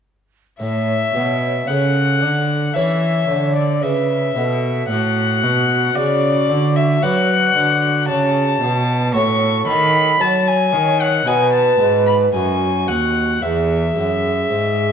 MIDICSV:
0, 0, Header, 1, 5, 480
1, 0, Start_track
1, 0, Key_signature, 3, "major"
1, 0, Tempo, 1071429
1, 270, Time_signature, 4, 2, 24, 8
1, 3147, Tempo, 1058201
1, 4108, Key_signature, 4, "major"
1, 5067, Tempo, 1086957
1, 6685, End_track
2, 0, Start_track
2, 0, Title_t, "Violin"
2, 0, Program_c, 0, 40
2, 269, Note_on_c, 0, 76, 66
2, 750, Note_on_c, 0, 78, 72
2, 757, Note_off_c, 0, 76, 0
2, 1228, Note_on_c, 0, 76, 67
2, 1235, Note_off_c, 0, 78, 0
2, 1590, Note_off_c, 0, 76, 0
2, 1593, Note_on_c, 0, 74, 55
2, 1713, Note_on_c, 0, 76, 58
2, 1720, Note_off_c, 0, 74, 0
2, 2185, Note_off_c, 0, 76, 0
2, 2188, Note_on_c, 0, 78, 71
2, 2664, Note_on_c, 0, 74, 80
2, 2671, Note_off_c, 0, 78, 0
2, 3029, Note_on_c, 0, 76, 68
2, 3036, Note_off_c, 0, 74, 0
2, 3146, Note_on_c, 0, 78, 86
2, 3153, Note_off_c, 0, 76, 0
2, 3623, Note_off_c, 0, 78, 0
2, 3626, Note_on_c, 0, 81, 79
2, 4097, Note_off_c, 0, 81, 0
2, 4109, Note_on_c, 0, 85, 85
2, 4343, Note_off_c, 0, 85, 0
2, 4347, Note_on_c, 0, 83, 91
2, 4591, Note_on_c, 0, 81, 79
2, 4598, Note_off_c, 0, 83, 0
2, 4714, Note_on_c, 0, 80, 77
2, 4721, Note_off_c, 0, 81, 0
2, 4956, Note_on_c, 0, 78, 74
2, 4963, Note_off_c, 0, 80, 0
2, 5072, Note_on_c, 0, 80, 72
2, 5078, Note_off_c, 0, 78, 0
2, 5183, Note_off_c, 0, 80, 0
2, 5186, Note_on_c, 0, 81, 68
2, 5419, Note_off_c, 0, 81, 0
2, 5425, Note_on_c, 0, 83, 71
2, 5460, Note_off_c, 0, 83, 0
2, 5546, Note_on_c, 0, 80, 71
2, 5783, Note_on_c, 0, 78, 65
2, 5790, Note_off_c, 0, 80, 0
2, 6022, Note_on_c, 0, 76, 71
2, 6029, Note_off_c, 0, 78, 0
2, 6685, Note_off_c, 0, 76, 0
2, 6685, End_track
3, 0, Start_track
3, 0, Title_t, "Flute"
3, 0, Program_c, 1, 73
3, 267, Note_on_c, 1, 73, 55
3, 735, Note_off_c, 1, 73, 0
3, 751, Note_on_c, 1, 69, 48
3, 1232, Note_on_c, 1, 73, 51
3, 1239, Note_off_c, 1, 69, 0
3, 1708, Note_off_c, 1, 73, 0
3, 1711, Note_on_c, 1, 71, 55
3, 1947, Note_off_c, 1, 71, 0
3, 1954, Note_on_c, 1, 69, 46
3, 2188, Note_off_c, 1, 69, 0
3, 2193, Note_on_c, 1, 66, 53
3, 3965, Note_off_c, 1, 66, 0
3, 4105, Note_on_c, 1, 69, 73
3, 4584, Note_on_c, 1, 73, 66
3, 4591, Note_off_c, 1, 69, 0
3, 5066, Note_off_c, 1, 73, 0
3, 5071, Note_on_c, 1, 71, 65
3, 5535, Note_off_c, 1, 71, 0
3, 5541, Note_on_c, 1, 66, 59
3, 6011, Note_off_c, 1, 66, 0
3, 6024, Note_on_c, 1, 68, 54
3, 6685, Note_off_c, 1, 68, 0
3, 6685, End_track
4, 0, Start_track
4, 0, Title_t, "Harpsichord"
4, 0, Program_c, 2, 6
4, 268, Note_on_c, 2, 45, 41
4, 494, Note_off_c, 2, 45, 0
4, 512, Note_on_c, 2, 47, 39
4, 736, Note_off_c, 2, 47, 0
4, 755, Note_on_c, 2, 49, 38
4, 977, Note_off_c, 2, 49, 0
4, 988, Note_on_c, 2, 50, 36
4, 1213, Note_off_c, 2, 50, 0
4, 1235, Note_on_c, 2, 52, 38
4, 1235, Note_on_c, 2, 61, 34
4, 1237, Note_on_c, 2, 69, 32
4, 1238, Note_on_c, 2, 73, 32
4, 1456, Note_off_c, 2, 52, 0
4, 1469, Note_on_c, 2, 50, 39
4, 1693, Note_off_c, 2, 50, 0
4, 1709, Note_on_c, 2, 49, 41
4, 1925, Note_off_c, 2, 61, 0
4, 1926, Note_off_c, 2, 69, 0
4, 1926, Note_off_c, 2, 73, 0
4, 1933, Note_off_c, 2, 49, 0
4, 1949, Note_on_c, 2, 47, 44
4, 2173, Note_off_c, 2, 47, 0
4, 2192, Note_on_c, 2, 45, 44
4, 2413, Note_off_c, 2, 45, 0
4, 2434, Note_on_c, 2, 47, 44
4, 2654, Note_off_c, 2, 47, 0
4, 2673, Note_on_c, 2, 49, 43
4, 2893, Note_off_c, 2, 49, 0
4, 2912, Note_on_c, 2, 50, 45
4, 3132, Note_off_c, 2, 50, 0
4, 3146, Note_on_c, 2, 54, 46
4, 3146, Note_on_c, 2, 62, 36
4, 3148, Note_on_c, 2, 66, 38
4, 3150, Note_on_c, 2, 71, 38
4, 3369, Note_off_c, 2, 54, 0
4, 3392, Note_on_c, 2, 50, 41
4, 3612, Note_off_c, 2, 50, 0
4, 3628, Note_on_c, 2, 49, 47
4, 3838, Note_off_c, 2, 62, 0
4, 3839, Note_off_c, 2, 66, 0
4, 3840, Note_off_c, 2, 71, 0
4, 3850, Note_off_c, 2, 49, 0
4, 3867, Note_on_c, 2, 47, 49
4, 4090, Note_off_c, 2, 47, 0
4, 4104, Note_on_c, 2, 45, 50
4, 4107, Note_on_c, 2, 64, 42
4, 4107, Note_on_c, 2, 66, 39
4, 4114, Note_on_c, 2, 73, 39
4, 4328, Note_off_c, 2, 45, 0
4, 4346, Note_on_c, 2, 51, 44
4, 4568, Note_off_c, 2, 51, 0
4, 4587, Note_on_c, 2, 54, 49
4, 4808, Note_off_c, 2, 54, 0
4, 4825, Note_on_c, 2, 51, 48
4, 5048, Note_off_c, 2, 51, 0
4, 5048, Note_off_c, 2, 64, 0
4, 5049, Note_off_c, 2, 66, 0
4, 5052, Note_off_c, 2, 73, 0
4, 5067, Note_on_c, 2, 63, 35
4, 5069, Note_on_c, 2, 47, 45
4, 5072, Note_on_c, 2, 66, 35
4, 5074, Note_on_c, 2, 71, 38
4, 5287, Note_off_c, 2, 47, 0
4, 5300, Note_on_c, 2, 44, 45
4, 5522, Note_off_c, 2, 44, 0
4, 5538, Note_on_c, 2, 42, 45
4, 5761, Note_off_c, 2, 42, 0
4, 5778, Note_on_c, 2, 39, 40
4, 6003, Note_off_c, 2, 39, 0
4, 6004, Note_off_c, 2, 63, 0
4, 6006, Note_off_c, 2, 66, 0
4, 6007, Note_off_c, 2, 71, 0
4, 6022, Note_on_c, 2, 40, 44
4, 6246, Note_off_c, 2, 40, 0
4, 6260, Note_on_c, 2, 42, 41
4, 6486, Note_off_c, 2, 42, 0
4, 6501, Note_on_c, 2, 44, 40
4, 6685, Note_off_c, 2, 44, 0
4, 6685, End_track
5, 0, Start_track
5, 0, Title_t, "Cello"
5, 0, Program_c, 3, 42
5, 273, Note_on_c, 3, 45, 54
5, 497, Note_off_c, 3, 45, 0
5, 513, Note_on_c, 3, 47, 46
5, 750, Note_off_c, 3, 47, 0
5, 756, Note_on_c, 3, 49, 51
5, 997, Note_on_c, 3, 50, 46
5, 1003, Note_off_c, 3, 49, 0
5, 1232, Note_off_c, 3, 50, 0
5, 1235, Note_on_c, 3, 52, 48
5, 1470, Note_off_c, 3, 52, 0
5, 1477, Note_on_c, 3, 50, 46
5, 1714, Note_on_c, 3, 49, 45
5, 1721, Note_off_c, 3, 50, 0
5, 1949, Note_off_c, 3, 49, 0
5, 1952, Note_on_c, 3, 47, 50
5, 2187, Note_off_c, 3, 47, 0
5, 2195, Note_on_c, 3, 45, 58
5, 2434, Note_on_c, 3, 47, 50
5, 2440, Note_off_c, 3, 45, 0
5, 2668, Note_off_c, 3, 47, 0
5, 2670, Note_on_c, 3, 49, 53
5, 2911, Note_on_c, 3, 50, 50
5, 2917, Note_off_c, 3, 49, 0
5, 3149, Note_off_c, 3, 50, 0
5, 3152, Note_on_c, 3, 54, 59
5, 3386, Note_off_c, 3, 54, 0
5, 3391, Note_on_c, 3, 50, 51
5, 3625, Note_off_c, 3, 50, 0
5, 3630, Note_on_c, 3, 49, 56
5, 3864, Note_off_c, 3, 49, 0
5, 3870, Note_on_c, 3, 47, 61
5, 4110, Note_on_c, 3, 45, 63
5, 4117, Note_off_c, 3, 47, 0
5, 4349, Note_off_c, 3, 45, 0
5, 4351, Note_on_c, 3, 51, 59
5, 4584, Note_off_c, 3, 51, 0
5, 4591, Note_on_c, 3, 54, 60
5, 4827, Note_on_c, 3, 51, 54
5, 4834, Note_off_c, 3, 54, 0
5, 5068, Note_off_c, 3, 51, 0
5, 5072, Note_on_c, 3, 47, 56
5, 5302, Note_off_c, 3, 47, 0
5, 5309, Note_on_c, 3, 44, 57
5, 5540, Note_off_c, 3, 44, 0
5, 5549, Note_on_c, 3, 42, 52
5, 5789, Note_on_c, 3, 39, 47
5, 5796, Note_off_c, 3, 42, 0
5, 6024, Note_off_c, 3, 39, 0
5, 6027, Note_on_c, 3, 40, 50
5, 6262, Note_off_c, 3, 40, 0
5, 6267, Note_on_c, 3, 42, 47
5, 6502, Note_off_c, 3, 42, 0
5, 6512, Note_on_c, 3, 44, 52
5, 6685, Note_off_c, 3, 44, 0
5, 6685, End_track
0, 0, End_of_file